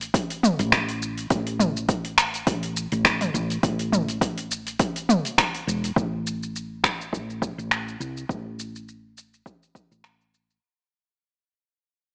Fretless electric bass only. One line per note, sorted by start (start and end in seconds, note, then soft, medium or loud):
0.59 1.25 A1 loud
1.30 2.42 A1 medium
2.47 2.86 A1 medium
2.92 3.29 A1 loud
3.34 3.57 A1 loud
3.63 4.75 A1 loud
5.67 5.90 E1 medium
5.96 7.08 A1 medium
7.13 7.52 A1 medium
7.58 7.95 A1 loud
8.00 8.23 C2 medium
8.29 9.41 A1 medium
9.91 10.57 A1 medium